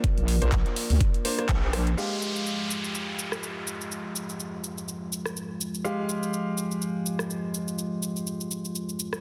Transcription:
Already playing: A#3 F4 A#4 D5
0.04 kick, closed hi-hat
0.17 A#1, closed hi-hat
0.28 open hi-hat
0.42 A#1 A#3 D4 C5, closed hi-hat
0.52 kick, clap, closed hi-hat
0.66 closed hi-hat
0.76 open hi-hat
0.90 D2, open hi-hat
1.01 kick, closed hi-hat
1.14 closed hi-hat
1.25 A#3 D4 C5, open hi-hat
1.38 A#3 D4 C5, cross-stick, closed hi-hat
1.49 A#1, kick, clap, closed hi-hat
1.73 A#3 D4 C5, cross-stick, open hi-hat
1.87 closed hi-hat
1.97 F3 G#3 F4 G4 F5 G5, downlifter, shaker
2.22 shaker
2.36 shaker
2.47 shaker
2.71 shaker
2.84 shaker
2.95 shaker
3.19 shaker
3.32 cross-stick, shaker
3.43 shaker
3.67 shaker
3.81 shaker
3.92 shaker
4.16 shaker
4.29 shaker
4.40 shaker
4.64 shaker
4.78 shaker
4.88 shaker
5.13 shaker
5.26 cross-stick, shaker
5.37 shaker
5.61 shaker
5.75 shaker
5.84 G#3 G4 F5, shaker
6.09 shaker
6.23 shaker
6.34 shaker
6.58 shaker
6.71 shaker
6.82 shaker
7.06 shaker
7.19 cross-stick, shaker
7.30 shaker
7.54 shaker
7.68 shaker
7.78 shaker
8.03 shaker
8.16 shaker
8.27 shaker
8.41 shaker
8.51 shaker
8.65 shaker
8.75 shaker
8.89 shaker
9.00 shaker
9.13 cross-stick, shaker

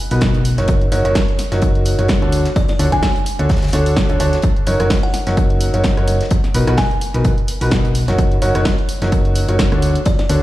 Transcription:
0.11 B1 B2 D#4 F#4 A#4 B4, open hi-hat
0.21 kick, snare, closed hi-hat
0.34 closed hi-hat
0.45 closed hi-hat, open hi-hat
0.58 F#1 F#3 D#4 F#4 A#4 C#5, snare, closed hi-hat
0.68 kick, closed hi-hat
0.81 closed hi-hat
0.92 F#1 F#3 D#4 F#4 A#4 C#5, closed hi-hat, open hi-hat
1.05 F#1 F#3 D#4 F#4 A#4 C#5, closed hi-hat
1.15 C#5, kick, snare, closed hi-hat, open hi-hat
1.28 closed hi-hat
1.39 snare, closed hi-hat, open hi-hat
1.52 F#1 F#3 D#4 F#4 A#4 C#5, snare, closed hi-hat
1.62 kick, closed hi-hat
1.75 closed hi-hat
1.85 closed hi-hat, open hi-hat
1.99 F#1 F#3 D#4 F#4 A#4 C#5, closed hi-hat
2.08 kick, snare, closed hi-hat
2.22 D2 D3 D4 F#4 A4 C#5, closed hi-hat
2.32 closed hi-hat, open hi-hat
2.45 snare, closed hi-hat
2.56 D5, kick, closed hi-hat
2.68 D5, snare, closed hi-hat
2.79 D2 D3 D4 F#4 A4 C#5, closed hi-hat, open hi-hat
2.92 D3 D4 F#4 A4 C#5 G#5, kick, closed hi-hat
3.03 G#5, kick, snare, closed hi-hat, open hi-hat
3.16 closed hi-hat
3.26 closed hi-hat, open hi-hat
3.39 D2 D3 D4 F#4 A4 C#5, closed hi-hat
3.49 kick, snare, closed hi-hat
3.56 snare, closed hi-hat
3.62 snare, closed hi-hat
3.68 snare, closed hi-hat
3.72 D2 D3 D4 F#4 A4 C#5, closed hi-hat, open hi-hat
3.86 open hi-hat
3.96 kick, snare, closed hi-hat
4.09 D2 D3 D4 F#4 A4 C#5, closed hi-hat
4.20 D2 D4 F#4 A4 C#5, closed hi-hat, open hi-hat
4.33 snare, closed hi-hat
4.42 kick, closed hi-hat
4.57 closed hi-hat
4.66 F#1 F#3 D#4 F#4 A#4 C#5, closed hi-hat, open hi-hat
4.80 F#1 F#3 D#4 F#4 A#4 C#5, cross-stick, closed hi-hat
4.90 C#5, kick, snare, closed hi-hat, open hi-hat
5.03 F#5, closed hi-hat
5.14 F#5, snare, closed hi-hat, open hi-hat
5.27 F#1 F#3 D#4 F#4 A#4 C#5, snare, closed hi-hat
5.37 kick, closed hi-hat
5.50 closed hi-hat
5.61 closed hi-hat, open hi-hat
5.74 F#1 F#3 D#4 F#4 A#4 C#5, closed hi-hat
5.84 kick, snare, closed hi-hat
5.97 F#1 F#3 D#4 F#4 A#4 C#5, cross-stick, closed hi-hat
6.08 closed hi-hat, open hi-hat
6.21 snare, closed hi-hat
6.31 kick, closed hi-hat
6.44 snare, closed hi-hat
6.54 B1 B2 D#4 F#4 A#4 B4, closed hi-hat, open hi-hat
6.67 B1 B2 D#4 F#4 A#4 B4, cross-stick, closed hi-hat
6.78 G#5, kick, snare, closed hi-hat, open hi-hat
6.91 closed hi-hat
7.01 closed hi-hat, open hi-hat
7.14 B1 B2 D#4 F#4 A#4 B4, closed hi-hat
7.25 kick, closed hi-hat
7.38 closed hi-hat
7.48 closed hi-hat, open hi-hat
7.61 B1 B2 D#4 F#4 A#4 B4, open hi-hat
7.71 kick, snare, closed hi-hat
7.85 closed hi-hat
7.95 closed hi-hat, open hi-hat
8.08 F#1 F#3 D#4 F#4 A#4 C#5, snare, closed hi-hat
8.18 kick, closed hi-hat
8.32 closed hi-hat
8.42 F#1 F#3 D#4 F#4 A#4 C#5, closed hi-hat, open hi-hat
8.55 F#1 F#3 D#4 F#4 A#4 C#5, cross-stick, closed hi-hat
8.65 C#5, kick, snare, closed hi-hat, open hi-hat
8.79 closed hi-hat
8.89 closed hi-hat, open hi-hat
9.02 F#1 F#3 D#4 F#4 A#4 C#5, snare, closed hi-hat
9.12 kick, closed hi-hat
9.25 closed hi-hat
9.35 closed hi-hat, open hi-hat
9.49 F#1 F#3 D#4 F#4 A#4 C#5, closed hi-hat
9.59 kick, snare, closed hi-hat
9.72 D2 D3 D4 F#4 A4 C#5, cross-stick, closed hi-hat
9.82 open hi-hat
9.95 closed hi-hat
10.05 D5, kick, closed hi-hat
10.19 D5, snare, closed hi-hat
10.29 D2 D3 D4 F#4 A4 C#5, closed hi-hat, open hi-hat

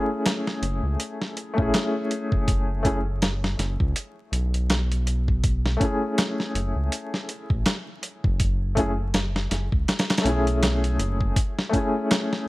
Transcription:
Already playing: A3 C#4 E4 G#4
0.26 snare, closed hi-hat
0.47 snare
0.62 F#1, closed hi-hat
0.83 C#2
1.00 closed hi-hat
1.22 snare
1.37 closed hi-hat
1.54 A3 C#4
1.58 A1 E4, kick
1.62 G#4
1.74 snare, closed hi-hat
2.11 closed hi-hat
2.32 F#1, kick
2.48 kick, closed hi-hat
2.83 A3 C#4 E4 G#4, kick, closed hi-hat
3.22 snare, closed hi-hat
3.44 snare
3.58 F#1, snare, closed hi-hat
3.80 C#2, kick
3.96 closed hi-hat
4.32 B1, closed hi-hat
4.54 closed hi-hat
4.70 snare, closed hi-hat
4.92 closed hi-hat
5.07 closed hi-hat
5.28 kick
5.44 kick, closed hi-hat
5.66 snare
5.77 A3 C#4, kick
5.81 E4 G#4, closed hi-hat
6.18 snare, closed hi-hat
6.40 snare
6.54 F#1, closed hi-hat
6.76 C#2
6.92 closed hi-hat
7.14 snare
7.29 closed hi-hat
7.50 A1, kick
7.66 snare, closed hi-hat
8.03 closed hi-hat
8.24 F#1, kick
8.40 kick, closed hi-hat
8.75 A3 C#4 E4, kick, closed hi-hat
8.79 G#4
9.14 snare, closed hi-hat
9.36 snare
9.51 F#1, snare, closed hi-hat
9.72 C#2, kick
9.88 snare, closed hi-hat
9.99 snare, closed hi-hat
10.10 snare, closed hi-hat
10.18 A3, snare, closed hi-hat
10.24 B1 C#4 E4, closed hi-hat
10.29 G#4
10.47 closed hi-hat
10.63 snare, closed hi-hat
10.84 closed hi-hat
10.99 F#1, closed hi-hat
11.21 kick
11.36 kick, closed hi-hat
11.59 snare
11.69 A3 C#4, kick
11.74 E4, closed hi-hat
11.78 G#4
12.11 snare, closed hi-hat
12.33 snare

